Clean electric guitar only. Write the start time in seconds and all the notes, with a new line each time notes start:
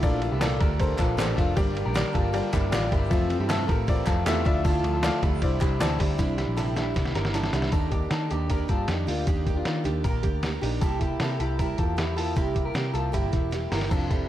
0.02 D4 F4
0.31 E4 G4
0.41 F4 A4
0.60 G4 A#4
0.99 F4 A4
1.18 D4 G4
1.37 D4 F4
1.57 D4 G4
1.85 G4 A#4
2.14 F4 A4
2.53 E4 G4
2.72 D4 F4
2.92 E4 G4
3.11 C4 F4
3.40 E4 G4
3.49 F4 A4
3.68 G4 A#4
4.07 F4 A4
4.26 E4 G4
4.45 D4 F4
4.65 F4 A4
4.93 F4 A4
5.22 E4 G4
5.61 E4 G4
5.81 E4 A4
6.00 E4 G4
6.19 C4 E4
6.38 E4 G4
6.57 E4 A4
6.77 E4 G4
7.15 G4 A#4
7.34 E4 A4
7.54 E4 G4
7.72 D#4 A4
7.92 D#4 G4
8.11 D#4 A4
8.31 D#4 G4
8.51 G4 A#4
8.70 F4 A4
8.89 D#4 G4
9.08 D4 F4
9.28 D#4 G4
9.56 D4 F4
9.85 D#4 G4
10.04 G4 A#4
10.62 D#4 G4
10.81 E4 A4
11.01 E4 G4
11.21 E4 A4
11.40 E4 G4
11.59 G4 A#4
11.79 F4 A4
11.98 E4 G4
12.17 F4 A4
12.37 E4 G4
12.65 G4 A#4
12.94 F4 A4
13.13 E4 G4
13.72 G4 A#4
13.91 F4 A4
14.10 E4 G4